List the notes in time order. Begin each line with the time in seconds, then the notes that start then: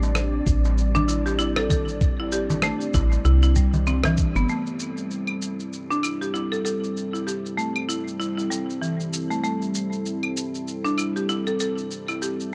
Already playing: A1 G3 A3 C4 D4 G4 D5
0.03 darbuka ka, shaker
0.15 cross-stick, shaker
0.47 A1, kick, shaker
0.65 darbuka ka, shaker
0.78 shaker
0.95 D4, darbuka tek, darbuka dum, shaker
1.08 E4, darbuka ka, shaker
1.26 G4, darbuka tek, shaker
1.39 E4, shaker
1.56 A4, cross-stick
1.70 A4, kick, darbuka dum, shaker
1.88 shaker
2.01 kick, shaker
2.20 E4
2.32 G4, darbuka tek, shaker
2.50 darbuka ka, darbuka dum, shaker
2.62 A3, cross-stick, shaker
2.81 shaker
2.94 A1 E4, kick, darbuka tek, shaker
3.12 darbuka ka, shaker
3.25 C2 E4, shaker
3.43 E4, shaker
3.56 G3, kick, shaker
3.74 darbuka dum, shaker
3.87 C4, shaker
4.03 E3, cross-stick, darbuka ka, darbuka dum, shaker
4.17 kick, darbuka tek, shaker
4.35 G1 B3, shaker
4.48 G3 A3 C4 E4 A4, shaker
4.67 shaker
4.80 shaker
4.97 shaker
5.11 shaker
5.27 claves
5.42 shaker
5.60 shaker
5.73 shaker
5.90 D4, shaker
6.03 E4, claves, shaker
6.21 G4, shaker
6.34 E4, shaker
6.52 A4, shaker
6.65 A4, shaker
6.84 shaker
6.97 shaker
7.13 E4, shaker
7.27 G4, shaker
7.46 shaker
7.57 A3, shaker
7.76 claves
7.89 E4, shaker
8.08 shaker
8.20 E4, shaker
8.37 E4, shaker
8.50 G3, shaker
8.70 shaker
8.82 E3, shaker
9.00 shaker
9.13 shaker
9.30 A3, shaker
9.44 A3, shaker
9.62 shaker
9.75 shaker
9.93 shaker
10.06 shaker
10.23 claves
10.37 shaker
10.55 shaker
10.68 shaker
10.84 D4, shaker
10.98 E4, claves, shaker
11.16 G4, shaker
11.29 E4, shaker
11.47 A4, shaker
11.60 A4, shaker
11.78 shaker
11.91 shaker
12.08 E4, claves, shaker
12.22 G4, shaker
12.40 shaker